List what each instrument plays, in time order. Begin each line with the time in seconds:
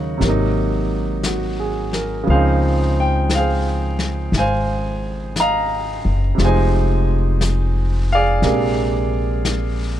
Already playing: upright bass D#2, grand piano C#3 F#3 A#3 C#4 D#4 F#4 A#4 C#5 F#5
0.18 upright bass G#1, grand piano C3 F#3, brush sweep, snare
0.25 grand piano A#3 D#4
1.23 grand piano F#4, brush sweep, snare, hi-hat pedal
1.60 grand piano G#4
1.93 grand piano A#4, snare
2.23 upright bass C#2, grand piano C#3 F3, brush sweep
2.30 grand piano C4 G#4 C5 F5
2.34 grand piano D#4
3.00 grand piano G5
3.30 brush sweep, snare, hi-hat pedal
3.35 grand piano G#4 C5 F5
3.99 snare
4.32 upright bass G#1, brush sweep, snare
4.38 grand piano C5 F5 G#5
5.36 brush sweep, snare, hi-hat pedal
5.40 grand piano D#5 F5 A#5
6.05 upright bass F#1
6.35 upright bass F1, grand piano C3 F3, brush sweep, snare
6.42 grand piano G#3 D#4 C5 D#5 G#5
7.41 brush sweep, snare, hi-hat pedal
8.12 grand piano G#4 D5 F5
8.42 upright bass A#1, grand piano C3 G#3 A#3 D4, brush sweep, snare
9.45 brush sweep, snare, hi-hat pedal